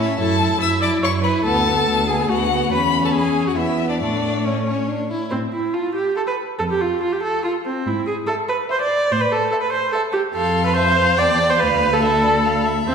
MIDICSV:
0, 0, Header, 1, 5, 480
1, 0, Start_track
1, 0, Key_signature, 3, "major"
1, 0, Tempo, 420463
1, 226, Time_signature, 3, 2, 24, 8
1, 3107, Tempo, 430108
1, 6006, Key_signature, 0, "minor"
1, 7427, Tempo, 418994
1, 14707, End_track
2, 0, Start_track
2, 0, Title_t, "Violin"
2, 0, Program_c, 0, 40
2, 0, Note_on_c, 0, 76, 66
2, 222, Note_off_c, 0, 76, 0
2, 229, Note_on_c, 0, 81, 75
2, 693, Note_off_c, 0, 81, 0
2, 699, Note_on_c, 0, 88, 76
2, 790, Note_off_c, 0, 88, 0
2, 943, Note_on_c, 0, 86, 75
2, 1034, Note_off_c, 0, 86, 0
2, 1191, Note_on_c, 0, 85, 75
2, 1282, Note_off_c, 0, 85, 0
2, 1410, Note_on_c, 0, 83, 69
2, 1502, Note_off_c, 0, 83, 0
2, 1658, Note_on_c, 0, 81, 78
2, 2391, Note_on_c, 0, 80, 71
2, 2408, Note_off_c, 0, 81, 0
2, 2629, Note_off_c, 0, 80, 0
2, 2637, Note_on_c, 0, 78, 69
2, 3102, Note_off_c, 0, 78, 0
2, 3108, Note_on_c, 0, 83, 77
2, 3475, Note_on_c, 0, 81, 52
2, 3492, Note_off_c, 0, 83, 0
2, 3567, Note_off_c, 0, 81, 0
2, 3573, Note_on_c, 0, 80, 60
2, 3931, Note_off_c, 0, 80, 0
2, 3953, Note_on_c, 0, 78, 52
2, 4047, Note_off_c, 0, 78, 0
2, 4053, Note_on_c, 0, 76, 55
2, 4411, Note_off_c, 0, 76, 0
2, 4417, Note_on_c, 0, 74, 52
2, 4532, Note_off_c, 0, 74, 0
2, 4538, Note_on_c, 0, 74, 57
2, 5025, Note_on_c, 0, 73, 44
2, 5041, Note_off_c, 0, 74, 0
2, 5514, Note_off_c, 0, 73, 0
2, 6480, Note_on_c, 0, 84, 38
2, 6833, Note_off_c, 0, 84, 0
2, 6954, Note_on_c, 0, 84, 39
2, 7307, Note_off_c, 0, 84, 0
2, 7912, Note_on_c, 0, 84, 38
2, 8269, Note_off_c, 0, 84, 0
2, 8399, Note_on_c, 0, 84, 41
2, 8755, Note_off_c, 0, 84, 0
2, 9354, Note_on_c, 0, 83, 41
2, 9715, Note_off_c, 0, 83, 0
2, 9845, Note_on_c, 0, 83, 46
2, 10199, Note_off_c, 0, 83, 0
2, 10781, Note_on_c, 0, 84, 48
2, 11141, Note_off_c, 0, 84, 0
2, 11270, Note_on_c, 0, 84, 49
2, 11622, Note_off_c, 0, 84, 0
2, 11746, Note_on_c, 0, 84, 47
2, 12209, Note_on_c, 0, 81, 46
2, 12226, Note_off_c, 0, 84, 0
2, 12695, Note_off_c, 0, 81, 0
2, 12706, Note_on_c, 0, 81, 46
2, 13173, Note_on_c, 0, 83, 51
2, 13190, Note_off_c, 0, 81, 0
2, 13645, Note_off_c, 0, 83, 0
2, 13652, Note_on_c, 0, 83, 49
2, 14624, Note_on_c, 0, 81, 49
2, 14641, Note_off_c, 0, 83, 0
2, 14707, Note_off_c, 0, 81, 0
2, 14707, End_track
3, 0, Start_track
3, 0, Title_t, "Viola"
3, 0, Program_c, 1, 41
3, 212, Note_on_c, 1, 69, 60
3, 684, Note_off_c, 1, 69, 0
3, 696, Note_on_c, 1, 76, 70
3, 926, Note_off_c, 1, 76, 0
3, 932, Note_on_c, 1, 74, 60
3, 1024, Note_off_c, 1, 74, 0
3, 1173, Note_on_c, 1, 73, 64
3, 1264, Note_off_c, 1, 73, 0
3, 1390, Note_on_c, 1, 71, 63
3, 1639, Note_off_c, 1, 71, 0
3, 1645, Note_on_c, 1, 69, 69
3, 2367, Note_on_c, 1, 68, 58
3, 2384, Note_off_c, 1, 69, 0
3, 2613, Note_on_c, 1, 66, 61
3, 2630, Note_off_c, 1, 68, 0
3, 3095, Note_off_c, 1, 66, 0
3, 3101, Note_on_c, 1, 71, 65
3, 3191, Note_off_c, 1, 71, 0
3, 3467, Note_on_c, 1, 69, 48
3, 3565, Note_off_c, 1, 69, 0
3, 3571, Note_on_c, 1, 68, 59
3, 3943, Note_on_c, 1, 66, 46
3, 3960, Note_off_c, 1, 68, 0
3, 4053, Note_on_c, 1, 64, 52
3, 4070, Note_off_c, 1, 66, 0
3, 4408, Note_off_c, 1, 64, 0
3, 4415, Note_on_c, 1, 62, 41
3, 4533, Note_off_c, 1, 62, 0
3, 4540, Note_on_c, 1, 62, 49
3, 5031, Note_on_c, 1, 61, 40
3, 5048, Note_off_c, 1, 62, 0
3, 5517, Note_off_c, 1, 61, 0
3, 5993, Note_on_c, 1, 60, 52
3, 6083, Note_off_c, 1, 60, 0
3, 6235, Note_on_c, 1, 64, 50
3, 6470, Note_on_c, 1, 65, 56
3, 6487, Note_off_c, 1, 64, 0
3, 6699, Note_off_c, 1, 65, 0
3, 6706, Note_on_c, 1, 67, 52
3, 6944, Note_off_c, 1, 67, 0
3, 6952, Note_on_c, 1, 69, 57
3, 7000, Note_off_c, 1, 69, 0
3, 7066, Note_on_c, 1, 71, 55
3, 7156, Note_off_c, 1, 71, 0
3, 7423, Note_on_c, 1, 69, 59
3, 7472, Note_off_c, 1, 69, 0
3, 7559, Note_on_c, 1, 67, 49
3, 7672, Note_on_c, 1, 65, 53
3, 7689, Note_off_c, 1, 67, 0
3, 7897, Note_off_c, 1, 65, 0
3, 7904, Note_on_c, 1, 65, 59
3, 8032, Note_on_c, 1, 67, 52
3, 8049, Note_off_c, 1, 65, 0
3, 8146, Note_off_c, 1, 67, 0
3, 8153, Note_on_c, 1, 69, 55
3, 8388, Note_off_c, 1, 69, 0
3, 8396, Note_on_c, 1, 65, 58
3, 8487, Note_off_c, 1, 65, 0
3, 8644, Note_on_c, 1, 60, 52
3, 8889, Note_on_c, 1, 64, 56
3, 8906, Note_off_c, 1, 60, 0
3, 9112, Note_off_c, 1, 64, 0
3, 9119, Note_on_c, 1, 68, 57
3, 9211, Note_off_c, 1, 68, 0
3, 9344, Note_on_c, 1, 69, 63
3, 9436, Note_off_c, 1, 69, 0
3, 9596, Note_on_c, 1, 71, 59
3, 9687, Note_off_c, 1, 71, 0
3, 9851, Note_on_c, 1, 72, 65
3, 9963, Note_off_c, 1, 72, 0
3, 9968, Note_on_c, 1, 74, 68
3, 10322, Note_on_c, 1, 72, 68
3, 10339, Note_off_c, 1, 74, 0
3, 10425, Note_on_c, 1, 71, 63
3, 10442, Note_off_c, 1, 72, 0
3, 10552, Note_on_c, 1, 69, 64
3, 10569, Note_off_c, 1, 71, 0
3, 10767, Note_off_c, 1, 69, 0
3, 10773, Note_on_c, 1, 69, 70
3, 10825, Note_off_c, 1, 69, 0
3, 10887, Note_on_c, 1, 71, 65
3, 11006, Note_off_c, 1, 71, 0
3, 11013, Note_on_c, 1, 72, 63
3, 11235, Note_off_c, 1, 72, 0
3, 11242, Note_on_c, 1, 69, 77
3, 11333, Note_off_c, 1, 69, 0
3, 11473, Note_on_c, 1, 67, 68
3, 11565, Note_off_c, 1, 67, 0
3, 11718, Note_on_c, 1, 69, 60
3, 12074, Note_off_c, 1, 69, 0
3, 12080, Note_on_c, 1, 71, 66
3, 12196, Note_off_c, 1, 71, 0
3, 12203, Note_on_c, 1, 72, 77
3, 12683, Note_on_c, 1, 74, 77
3, 12701, Note_off_c, 1, 72, 0
3, 13048, Note_on_c, 1, 72, 67
3, 13065, Note_off_c, 1, 74, 0
3, 13162, Note_on_c, 1, 71, 72
3, 13179, Note_off_c, 1, 72, 0
3, 13544, Note_on_c, 1, 69, 72
3, 13561, Note_off_c, 1, 71, 0
3, 13644, Note_off_c, 1, 69, 0
3, 13651, Note_on_c, 1, 69, 76
3, 14367, Note_off_c, 1, 69, 0
3, 14626, Note_on_c, 1, 60, 67
3, 14707, Note_off_c, 1, 60, 0
3, 14707, End_track
4, 0, Start_track
4, 0, Title_t, "Violin"
4, 0, Program_c, 2, 40
4, 0, Note_on_c, 2, 61, 47
4, 214, Note_off_c, 2, 61, 0
4, 222, Note_on_c, 2, 64, 54
4, 457, Note_off_c, 2, 64, 0
4, 472, Note_on_c, 2, 64, 46
4, 697, Note_off_c, 2, 64, 0
4, 704, Note_on_c, 2, 64, 50
4, 925, Note_off_c, 2, 64, 0
4, 932, Note_on_c, 2, 64, 48
4, 1170, Note_off_c, 2, 64, 0
4, 1176, Note_on_c, 2, 64, 45
4, 1407, Note_off_c, 2, 64, 0
4, 1414, Note_on_c, 2, 64, 52
4, 1651, Note_off_c, 2, 64, 0
4, 1677, Note_on_c, 2, 59, 55
4, 1891, Note_off_c, 2, 59, 0
4, 1898, Note_on_c, 2, 59, 47
4, 2136, Note_off_c, 2, 59, 0
4, 2146, Note_on_c, 2, 59, 50
4, 2377, Note_off_c, 2, 59, 0
4, 2384, Note_on_c, 2, 59, 49
4, 2620, Note_off_c, 2, 59, 0
4, 2631, Note_on_c, 2, 59, 47
4, 2862, Note_off_c, 2, 59, 0
4, 2869, Note_on_c, 2, 59, 48
4, 3104, Note_off_c, 2, 59, 0
4, 3114, Note_on_c, 2, 61, 54
4, 4067, Note_on_c, 2, 59, 45
4, 4083, Note_off_c, 2, 61, 0
4, 4553, Note_off_c, 2, 59, 0
4, 4559, Note_on_c, 2, 57, 42
4, 5033, Note_off_c, 2, 57, 0
4, 5051, Note_on_c, 2, 57, 46
4, 5140, Note_off_c, 2, 57, 0
4, 5279, Note_on_c, 2, 61, 46
4, 5507, Note_on_c, 2, 62, 51
4, 5524, Note_off_c, 2, 61, 0
4, 5757, Note_off_c, 2, 62, 0
4, 5767, Note_on_c, 2, 64, 45
4, 6002, Note_off_c, 2, 64, 0
4, 6478, Note_on_c, 2, 81, 40
4, 6832, Note_off_c, 2, 81, 0
4, 6961, Note_on_c, 2, 81, 41
4, 7310, Note_off_c, 2, 81, 0
4, 7905, Note_on_c, 2, 81, 43
4, 8265, Note_off_c, 2, 81, 0
4, 8387, Note_on_c, 2, 81, 43
4, 8749, Note_off_c, 2, 81, 0
4, 9371, Note_on_c, 2, 76, 43
4, 9724, Note_off_c, 2, 76, 0
4, 9837, Note_on_c, 2, 76, 45
4, 10194, Note_off_c, 2, 76, 0
4, 10789, Note_on_c, 2, 76, 47
4, 11146, Note_off_c, 2, 76, 0
4, 11267, Note_on_c, 2, 76, 50
4, 11620, Note_off_c, 2, 76, 0
4, 11736, Note_on_c, 2, 77, 52
4, 12198, Note_on_c, 2, 76, 55
4, 12216, Note_off_c, 2, 77, 0
4, 12440, Note_on_c, 2, 77, 59
4, 12457, Note_off_c, 2, 76, 0
4, 12672, Note_on_c, 2, 79, 49
4, 12689, Note_off_c, 2, 77, 0
4, 13136, Note_off_c, 2, 79, 0
4, 13143, Note_on_c, 2, 77, 52
4, 13641, Note_on_c, 2, 76, 53
4, 13658, Note_off_c, 2, 77, 0
4, 13892, Note_on_c, 2, 74, 54
4, 13909, Note_off_c, 2, 76, 0
4, 14137, Note_on_c, 2, 77, 51
4, 14154, Note_off_c, 2, 74, 0
4, 14374, Note_on_c, 2, 76, 54
4, 14391, Note_off_c, 2, 77, 0
4, 14707, Note_off_c, 2, 76, 0
4, 14707, End_track
5, 0, Start_track
5, 0, Title_t, "Cello"
5, 0, Program_c, 3, 42
5, 0, Note_on_c, 3, 45, 53
5, 164, Note_off_c, 3, 45, 0
5, 217, Note_on_c, 3, 42, 60
5, 640, Note_off_c, 3, 42, 0
5, 686, Note_on_c, 3, 42, 55
5, 1115, Note_off_c, 3, 42, 0
5, 1170, Note_on_c, 3, 42, 60
5, 1596, Note_off_c, 3, 42, 0
5, 1649, Note_on_c, 3, 38, 60
5, 2079, Note_off_c, 3, 38, 0
5, 2139, Note_on_c, 3, 38, 59
5, 2567, Note_off_c, 3, 38, 0
5, 2627, Note_on_c, 3, 38, 59
5, 3052, Note_off_c, 3, 38, 0
5, 3109, Note_on_c, 3, 40, 52
5, 4020, Note_off_c, 3, 40, 0
5, 4061, Note_on_c, 3, 40, 45
5, 4557, Note_on_c, 3, 45, 44
5, 4573, Note_off_c, 3, 40, 0
5, 5782, Note_off_c, 3, 45, 0
5, 6008, Note_on_c, 3, 45, 45
5, 6383, Note_off_c, 3, 45, 0
5, 7430, Note_on_c, 3, 41, 46
5, 7811, Note_off_c, 3, 41, 0
5, 8877, Note_on_c, 3, 44, 52
5, 9256, Note_off_c, 3, 44, 0
5, 10314, Note_on_c, 3, 45, 55
5, 10690, Note_off_c, 3, 45, 0
5, 11732, Note_on_c, 3, 41, 52
5, 12694, Note_on_c, 3, 40, 51
5, 12712, Note_off_c, 3, 41, 0
5, 13186, Note_on_c, 3, 38, 55
5, 13203, Note_off_c, 3, 40, 0
5, 14620, Note_off_c, 3, 38, 0
5, 14627, Note_on_c, 3, 40, 52
5, 14707, Note_off_c, 3, 40, 0
5, 14707, End_track
0, 0, End_of_file